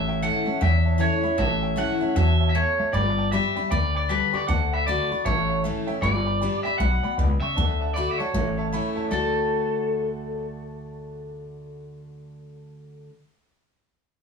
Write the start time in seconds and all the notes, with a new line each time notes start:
Already playing: A1 A2 E5
0.07 C#5 E5 G5
0.21 E3 A3 C#4 E4 C#5 E5 F#5 A5
0.45 C#4 E4 C#5 E5 A5, muted upright bass stroke
0.60 E2 C#5 E5 G5
0.84 C#5 E5 A5
0.98 E3 A3 C#4 E4 C#5 E5 A5
1.23 C#4 E4 C#5 E5 B5, muted upright bass stroke
1.37 A1 A2 C#5 E5 A5
1.61 C#5 E5 G5
1.76 E3 A3 C#4 E4 C#5 E5 F#5 A5
2.01 C#4 E4 C#5 E5 A5, muted upright bass stroke
2.16 E2 B2 C#5 E5 A5
2.39 C#5 E5 A5
2.49 E5
2.55 A2 C#5 E5 A5
2.79 C#5 E5 A5, muted upright bass stroke
2.92 G1 G2 D5 G5 B5
3.17 D5 G5 A5
3.31 G3 B3 D4 G4 D5 E5 G5 B5
3.55 D4 G4 D5 G5 B5, muted upright bass stroke
3.70 D2 D3 D5 G5 B5
3.94 D5 G5 B5
4.09 G3 B3 D4 G4 B4 D5 G5 A5
4.32 D4 G4 D5 G5 C#6, muted upright bass stroke
4.47 D2 D3 D5 F#5 A5
4.72 D5 E5 F#5 B5
4.86 D3 A3 D4 F#4 D5 F#5 B5
5.10 D4 F#4 D5 F#5 B5, muted upright bass stroke
5.24 A1 A2 C#5 E5 A5
5.48 C#5 E5 A5
5.63 E3 A3 C#4 E4 C#5 E5 A5
5.86 C#4 E4 C#5 E5 G5, muted upright bass stroke
6.01 G1 G2 D5 G5 B5
6.25 D5 G5 B5
6.40 G3 B3 D4 G4 D5 G5 B5
6.63 D4 G4 D5 E5 G5 B5, muted upright bass stroke
6.78 B1 B2 D5 F#5 G5 B5
7.03 D5 G5 B5, muted upright bass stroke
7.17 C#2 C#3 D5 G5 B5
7.40 D5 E5 G5 C#6, muted upright bass stroke
7.55 D2 D3 D5 F#5 A5
7.80 D5 F#5 A5
7.94 D3 A3 D4 F#4 D5 F#5 B5
8.11 E5
8.18 D4 F#4 C#5 D5 F#5 A5, muted upright bass stroke
8.33 A1 A2 C#5 E5 A5
8.57 C#5 E5 A5
8.72 E3 A3 C#4 E4 C#5 E5 B5
8.95 C#5 E5 A5, muted upright bass stroke
9.08 D2 D3 A3 A4 D5 F#5
9.13 D4 F#4 A5